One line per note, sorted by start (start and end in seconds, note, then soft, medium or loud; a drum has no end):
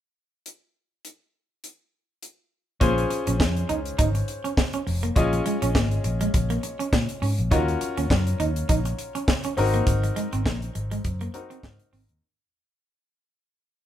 0.46 closed hi-hat medium
1.05 closed hi-hat medium
1.64 closed hi-hat medium
2.23 closed hi-hat medium
2.80 3.03 A#1 medium
2.80 2.91 A#3 medium
2.80 5.12 C#4 medium
2.80 5.12 F4 medium
2.80 5.12 G#4 medium
2.80 5.13 C5 medium
2.80 kick loud
2.80 closed hi-hat medium
2.98 closed hi-hat soft
3.10 muted clean electric guitar stroke soft
3.10 closed hi-hat medium
3.27 3.41 A#1 medium
3.27 3.35 C#4 medium
3.27 closed hi-hat medium
3.40 3.62 F2 medium
3.40 kick loud
3.40 snare loud
3.40 clap medium
3.57 closed hi-hat soft
3.69 3.92 C#2 medium
3.69 3.79 D#4 medium
3.69 closed hi-hat medium
3.85 closed hi-hat medium
3.98 4.21 G#1 medium
3.98 4.08 D#4 medium
3.98 kick loud
3.98 closed hi-hat loud
4.15 muted clean electric guitar stroke soft
4.15 closed hi-hat medium
4.28 closed hi-hat medium
4.44 4.52 C#4 medium
4.44 closed hi-hat soft
4.57 kick loud
4.57 snare loud
4.57 clap medium
4.73 4.81 C#4 medium
4.73 closed hi-hat medium
4.87 5.09 F1 medium
4.87 muted clean electric guitar stroke soft
4.87 open hi-hat medium
5.03 5.11 A#3 medium
5.03 closed hi-hat soft
5.16 5.38 A#1 medium
5.16 7.47 C#4 medium
5.16 7.48 F4 medium
5.16 7.48 G#4 medium
5.16 7.48 D#5 medium
5.16 kick loud
5.16 closed hi-hat medium
5.33 muted clean electric guitar stroke soft
5.33 closed hi-hat soft
5.46 5.55 G#3 medium
5.46 closed hi-hat medium
5.62 5.72 A#1 medium
5.62 5.70 C#4 medium
5.62 closed hi-hat medium
5.75 5.97 G#1 medium
5.75 5.85 A#3 medium
5.75 kick loud
5.75 snare loud
5.75 clap medium
5.91 closed hi-hat soft
6.04 6.26 A#1 medium
6.04 muted clean electric guitar stroke soft
6.04 closed hi-hat medium
6.21 6.28 G#3 medium
6.21 closed hi-hat medium
6.34 6.56 A#1 medium
6.34 kick loud
6.34 closed hi-hat loud
6.50 6.58 A#3 medium
6.50 closed hi-hat medium
6.63 muted clean electric guitar stroke soft
6.63 closed hi-hat medium
6.79 6.87 C#4 medium
6.79 closed hi-hat medium
6.93 7.05 A#2 loud
6.93 kick loud
6.93 snare loud
6.93 clap medium
7.09 closed hi-hat medium
7.22 7.34 G#2 medium
7.22 7.32 C#4 medium
7.22 open hi-hat medium
7.38 7.48 A#1 medium
7.38 closed hi-hat soft
7.51 7.74 D#2 loud
7.51 9.53 C#4 medium
7.51 7.61 D#4 medium
7.51 9.53 F4 medium
7.51 9.54 F#4 medium
7.51 9.54 A#4 medium
7.51 kick loud
7.51 closed hi-hat medium
7.68 closed hi-hat soft
7.81 muted clean electric guitar stroke soft
7.81 closed hi-hat medium
7.97 8.07 D#2 medium
7.97 8.05 C#4 medium
7.97 closed hi-hat medium
8.10 8.32 F#2 medium
8.10 kick loud
8.10 snare loud
8.10 clap medium
8.27 closed hi-hat soft
8.40 8.62 D#2 medium
8.40 8.50 D#4 medium
8.40 closed hi-hat medium
8.56 closed hi-hat medium
8.69 8.91 A#1 medium
8.69 8.79 D#4 medium
8.69 kick loud
8.69 closed hi-hat loud
8.85 muted clean electric guitar stroke soft
8.85 closed hi-hat medium
8.99 closed hi-hat medium
9.15 9.23 C#4 medium
9.15 closed hi-hat soft
9.28 kick loud
9.28 snare loud
9.28 clap medium
9.44 9.52 C#4 medium
9.44 closed hi-hat medium
9.57 9.80 G#1 medium
9.57 11.30 C4 medium
9.57 11.30 D#4 medium
9.57 11.31 F#4 medium
9.57 11.31 A#4 medium
9.57 muted clean electric guitar stroke soft
9.57 open hi-hat medium
9.74 9.82 A#3 medium
9.74 closed hi-hat soft
9.87 10.09 G#1 loud
9.87 kick loud
9.87 closed hi-hat medium
10.03 muted clean electric guitar stroke soft
10.03 closed hi-hat soft
10.16 10.26 G#3 medium
10.16 closed hi-hat medium
10.33 10.43 G#1 loud
10.33 10.40 C4 medium
10.33 closed hi-hat medium
10.46 10.68 A#1 medium
10.46 10.56 A#3 medium
10.46 kick loud
10.46 snare loud
10.46 clap medium
10.62 closed hi-hat soft
10.75 10.97 G#1 medium
10.75 muted clean electric guitar stroke soft
10.75 closed hi-hat medium
10.91 10.99 G#3 medium
10.91 closed hi-hat medium
11.04 11.27 F#2 medium
11.04 kick loud
11.04 closed hi-hat medium
11.21 11.29 A#3 medium
11.21 closed hi-hat soft
11.34 12.22 C4 medium
11.34 12.22 D#4 soft
11.34 12.22 F#4 soft
11.34 12.23 A#4 medium
11.34 muted clean electric guitar stroke soft
11.34 closed hi-hat medium
11.50 11.58 C4 medium
11.50 closed hi-hat soft
11.63 11.76 G#2 loud
11.63 kick loud
11.63 snare medium
11.63 clap medium
11.79 closed hi-hat medium
11.93 12.05 G#1 medium
11.93 12.02 C4 medium
11.93 open hi-hat medium
12.09 12.19 D#2 medium
12.09 closed hi-hat soft